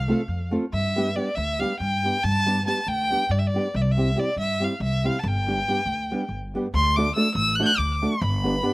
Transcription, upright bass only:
Already playing: C2
0.28 F2
0.73 G2
1.37 D2
1.80 G2
2.24 G2
2.87 D2
3.29 G2
3.75 C2
4.37 G2
4.80 C2
5.24 G1
5.86 D2
6.29 G1
6.74 D2
7.35 A1
7.78 D2
8.21 G1

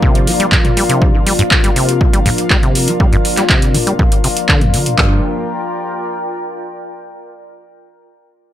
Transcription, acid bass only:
0.03 C3
0.27 G3
0.40 G3
0.52 G2
0.77 G3
0.89 C3
1.14 G3
1.26 G3
1.39 G2
1.64 G3
1.76 C3
2.01 G3
2.13 G3
2.26 G2
2.51 G3
2.63 C3
2.88 G3
3.00 G3
3.13 G2
3.37 G3
3.50 C3
3.74 G3
3.87 G3
3.99 G2
4.24 C3
4.49 D3
4.61 F2
4.74 D3
4.86 A#2
4.98 G2

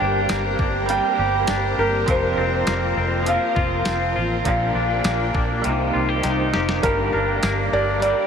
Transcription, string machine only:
Already playing: G4 A#4 C5 A#5
2.07 F4 A#4
4.46 D5 G5
5.66 D#4 C5 G5
6.84 G4 A#4 D5 A#5

